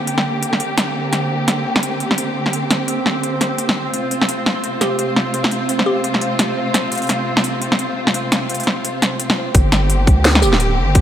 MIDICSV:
0, 0, Header, 1, 6, 480
1, 0, Start_track
1, 0, Key_signature, -2, "minor"
1, 0, Tempo, 350877
1, 1542, Time_signature, 4, 2, 24, 8
1, 15064, End_track
2, 0, Start_track
2, 0, Title_t, "Synth pluck"
2, 0, Program_c, 0, 84
2, 6581, Note_on_c, 0, 67, 84
2, 6963, Note_off_c, 0, 67, 0
2, 8018, Note_on_c, 0, 67, 80
2, 8500, Note_off_c, 0, 67, 0
2, 14254, Note_on_c, 0, 67, 93
2, 14639, Note_off_c, 0, 67, 0
2, 15064, End_track
3, 0, Start_track
3, 0, Title_t, "Synth texture"
3, 0, Program_c, 1, 99
3, 0, Note_on_c, 1, 60, 82
3, 0, Note_on_c, 1, 72, 83
3, 13053, Note_off_c, 1, 60, 0
3, 13053, Note_off_c, 1, 72, 0
3, 13069, Note_on_c, 1, 72, 90
3, 13070, Note_on_c, 1, 60, 93
3, 15064, Note_off_c, 1, 60, 0
3, 15064, Note_off_c, 1, 72, 0
3, 15064, End_track
4, 0, Start_track
4, 0, Title_t, "String section"
4, 0, Program_c, 2, 48
4, 0, Note_on_c, 2, 50, 70
4, 0, Note_on_c, 2, 58, 65
4, 0, Note_on_c, 2, 67, 78
4, 5323, Note_off_c, 2, 67, 0
4, 5324, Note_off_c, 2, 58, 0
4, 5325, Note_off_c, 2, 50, 0
4, 5380, Note_on_c, 2, 57, 66
4, 5382, Note_on_c, 2, 65, 77
4, 5383, Note_on_c, 2, 48, 72
4, 13006, Note_off_c, 2, 57, 0
4, 13007, Note_off_c, 2, 48, 0
4, 13007, Note_off_c, 2, 65, 0
4, 13060, Note_on_c, 2, 58, 72
4, 13061, Note_on_c, 2, 50, 82
4, 13063, Note_on_c, 2, 67, 90
4, 15064, Note_off_c, 2, 50, 0
4, 15064, Note_off_c, 2, 58, 0
4, 15064, Note_off_c, 2, 67, 0
4, 15064, End_track
5, 0, Start_track
5, 0, Title_t, "808-style bass"
5, 0, Program_c, 3, 38
5, 13060, Note_on_c, 3, 31, 100
5, 13781, Note_on_c, 3, 38, 99
5, 13801, Note_off_c, 3, 31, 0
5, 14264, Note_on_c, 3, 26, 104
5, 14284, Note_off_c, 3, 38, 0
5, 14742, Note_on_c, 3, 31, 87
5, 14762, Note_off_c, 3, 26, 0
5, 15064, Note_off_c, 3, 31, 0
5, 15064, End_track
6, 0, Start_track
6, 0, Title_t, "Drums"
6, 101, Note_on_c, 9, 42, 73
6, 238, Note_off_c, 9, 42, 0
6, 241, Note_on_c, 9, 40, 48
6, 378, Note_off_c, 9, 40, 0
6, 582, Note_on_c, 9, 42, 73
6, 719, Note_off_c, 9, 42, 0
6, 722, Note_on_c, 9, 40, 47
6, 820, Note_on_c, 9, 42, 59
6, 858, Note_off_c, 9, 40, 0
6, 957, Note_off_c, 9, 42, 0
6, 1060, Note_on_c, 9, 40, 72
6, 1060, Note_on_c, 9, 42, 72
6, 1197, Note_off_c, 9, 40, 0
6, 1197, Note_off_c, 9, 42, 0
6, 1540, Note_on_c, 9, 40, 47
6, 1540, Note_on_c, 9, 42, 70
6, 1677, Note_off_c, 9, 40, 0
6, 1677, Note_off_c, 9, 42, 0
6, 2021, Note_on_c, 9, 40, 47
6, 2021, Note_on_c, 9, 42, 73
6, 2158, Note_off_c, 9, 40, 0
6, 2158, Note_off_c, 9, 42, 0
6, 2403, Note_on_c, 9, 40, 68
6, 2502, Note_on_c, 9, 42, 72
6, 2540, Note_off_c, 9, 40, 0
6, 2638, Note_off_c, 9, 42, 0
6, 2740, Note_on_c, 9, 42, 58
6, 2877, Note_off_c, 9, 42, 0
6, 2883, Note_on_c, 9, 40, 47
6, 2980, Note_on_c, 9, 42, 72
6, 3020, Note_off_c, 9, 40, 0
6, 3117, Note_off_c, 9, 42, 0
6, 3363, Note_on_c, 9, 40, 45
6, 3463, Note_on_c, 9, 42, 70
6, 3500, Note_off_c, 9, 40, 0
6, 3600, Note_off_c, 9, 42, 0
6, 3701, Note_on_c, 9, 40, 71
6, 3701, Note_on_c, 9, 42, 60
6, 3837, Note_off_c, 9, 40, 0
6, 3837, Note_off_c, 9, 42, 0
6, 3941, Note_on_c, 9, 42, 72
6, 4077, Note_off_c, 9, 42, 0
6, 4183, Note_on_c, 9, 40, 43
6, 4320, Note_off_c, 9, 40, 0
6, 4425, Note_on_c, 9, 42, 68
6, 4562, Note_off_c, 9, 42, 0
6, 4663, Note_on_c, 9, 40, 43
6, 4663, Note_on_c, 9, 42, 57
6, 4800, Note_off_c, 9, 40, 0
6, 4800, Note_off_c, 9, 42, 0
6, 4903, Note_on_c, 9, 42, 70
6, 5040, Note_off_c, 9, 42, 0
6, 5046, Note_on_c, 9, 40, 72
6, 5183, Note_off_c, 9, 40, 0
6, 5384, Note_on_c, 9, 42, 69
6, 5521, Note_off_c, 9, 42, 0
6, 5625, Note_on_c, 9, 42, 59
6, 5762, Note_off_c, 9, 42, 0
6, 5766, Note_on_c, 9, 40, 45
6, 5864, Note_on_c, 9, 42, 68
6, 5903, Note_off_c, 9, 40, 0
6, 6001, Note_off_c, 9, 42, 0
6, 6105, Note_on_c, 9, 40, 67
6, 6242, Note_off_c, 9, 40, 0
6, 6343, Note_on_c, 9, 42, 65
6, 6479, Note_off_c, 9, 42, 0
6, 6581, Note_on_c, 9, 40, 43
6, 6581, Note_on_c, 9, 42, 55
6, 6718, Note_off_c, 9, 40, 0
6, 6718, Note_off_c, 9, 42, 0
6, 6823, Note_on_c, 9, 42, 70
6, 6960, Note_off_c, 9, 42, 0
6, 7064, Note_on_c, 9, 40, 44
6, 7201, Note_off_c, 9, 40, 0
6, 7303, Note_on_c, 9, 42, 69
6, 7440, Note_off_c, 9, 42, 0
6, 7444, Note_on_c, 9, 40, 71
6, 7543, Note_on_c, 9, 42, 60
6, 7580, Note_off_c, 9, 40, 0
6, 7680, Note_off_c, 9, 42, 0
6, 7784, Note_on_c, 9, 42, 67
6, 7921, Note_off_c, 9, 42, 0
6, 7922, Note_on_c, 9, 40, 48
6, 8059, Note_off_c, 9, 40, 0
6, 8263, Note_on_c, 9, 42, 68
6, 8400, Note_off_c, 9, 42, 0
6, 8402, Note_on_c, 9, 40, 50
6, 8501, Note_on_c, 9, 42, 53
6, 8539, Note_off_c, 9, 40, 0
6, 8638, Note_off_c, 9, 42, 0
6, 8743, Note_on_c, 9, 40, 71
6, 8743, Note_on_c, 9, 42, 68
6, 8879, Note_off_c, 9, 40, 0
6, 8879, Note_off_c, 9, 42, 0
6, 9224, Note_on_c, 9, 40, 50
6, 9224, Note_on_c, 9, 42, 71
6, 9360, Note_off_c, 9, 40, 0
6, 9360, Note_off_c, 9, 42, 0
6, 9463, Note_on_c, 9, 42, 58
6, 9509, Note_off_c, 9, 42, 0
6, 9509, Note_on_c, 9, 42, 46
6, 9542, Note_off_c, 9, 42, 0
6, 9542, Note_on_c, 9, 42, 39
6, 9602, Note_off_c, 9, 42, 0
6, 9602, Note_on_c, 9, 42, 31
6, 9622, Note_off_c, 9, 42, 0
6, 9622, Note_on_c, 9, 42, 25
6, 9671, Note_off_c, 9, 42, 0
6, 9671, Note_on_c, 9, 42, 20
6, 9702, Note_off_c, 9, 42, 0
6, 9702, Note_on_c, 9, 40, 49
6, 9702, Note_on_c, 9, 42, 67
6, 9839, Note_off_c, 9, 40, 0
6, 9839, Note_off_c, 9, 42, 0
6, 10079, Note_on_c, 9, 40, 74
6, 10178, Note_on_c, 9, 42, 70
6, 10216, Note_off_c, 9, 40, 0
6, 10315, Note_off_c, 9, 42, 0
6, 10418, Note_on_c, 9, 42, 57
6, 10555, Note_off_c, 9, 42, 0
6, 10559, Note_on_c, 9, 40, 51
6, 10656, Note_on_c, 9, 42, 70
6, 10695, Note_off_c, 9, 40, 0
6, 10793, Note_off_c, 9, 42, 0
6, 11039, Note_on_c, 9, 40, 47
6, 11140, Note_on_c, 9, 42, 75
6, 11176, Note_off_c, 9, 40, 0
6, 11276, Note_off_c, 9, 42, 0
6, 11380, Note_on_c, 9, 40, 79
6, 11380, Note_on_c, 9, 42, 61
6, 11517, Note_off_c, 9, 40, 0
6, 11517, Note_off_c, 9, 42, 0
6, 11621, Note_on_c, 9, 42, 71
6, 11689, Note_off_c, 9, 42, 0
6, 11689, Note_on_c, 9, 42, 59
6, 11763, Note_off_c, 9, 42, 0
6, 11763, Note_on_c, 9, 42, 48
6, 11812, Note_off_c, 9, 42, 0
6, 11812, Note_on_c, 9, 42, 38
6, 11861, Note_on_c, 9, 40, 49
6, 11949, Note_off_c, 9, 42, 0
6, 11998, Note_off_c, 9, 40, 0
6, 12101, Note_on_c, 9, 42, 73
6, 12238, Note_off_c, 9, 42, 0
6, 12342, Note_on_c, 9, 40, 50
6, 12342, Note_on_c, 9, 42, 58
6, 12479, Note_off_c, 9, 40, 0
6, 12479, Note_off_c, 9, 42, 0
6, 12579, Note_on_c, 9, 42, 73
6, 12716, Note_off_c, 9, 42, 0
6, 12718, Note_on_c, 9, 40, 80
6, 12855, Note_off_c, 9, 40, 0
6, 13058, Note_on_c, 9, 42, 84
6, 13059, Note_on_c, 9, 36, 121
6, 13195, Note_off_c, 9, 42, 0
6, 13196, Note_off_c, 9, 36, 0
6, 13298, Note_on_c, 9, 40, 65
6, 13298, Note_on_c, 9, 42, 41
6, 13298, Note_on_c, 9, 54, 38
6, 13435, Note_off_c, 9, 40, 0
6, 13435, Note_off_c, 9, 42, 0
6, 13435, Note_off_c, 9, 54, 0
6, 13538, Note_on_c, 9, 42, 70
6, 13675, Note_off_c, 9, 42, 0
6, 13780, Note_on_c, 9, 36, 107
6, 13782, Note_on_c, 9, 42, 37
6, 13917, Note_off_c, 9, 36, 0
6, 13919, Note_off_c, 9, 42, 0
6, 14022, Note_on_c, 9, 38, 114
6, 14022, Note_on_c, 9, 42, 82
6, 14159, Note_off_c, 9, 38, 0
6, 14159, Note_off_c, 9, 42, 0
6, 14163, Note_on_c, 9, 40, 84
6, 14262, Note_on_c, 9, 42, 37
6, 14262, Note_on_c, 9, 54, 64
6, 14299, Note_off_c, 9, 40, 0
6, 14398, Note_off_c, 9, 42, 0
6, 14398, Note_off_c, 9, 54, 0
6, 14401, Note_on_c, 9, 38, 38
6, 14401, Note_on_c, 9, 40, 40
6, 14500, Note_on_c, 9, 42, 70
6, 14537, Note_off_c, 9, 38, 0
6, 14537, Note_off_c, 9, 40, 0
6, 14637, Note_off_c, 9, 42, 0
6, 14980, Note_on_c, 9, 42, 84
6, 14982, Note_on_c, 9, 36, 124
6, 15064, Note_off_c, 9, 36, 0
6, 15064, Note_off_c, 9, 42, 0
6, 15064, End_track
0, 0, End_of_file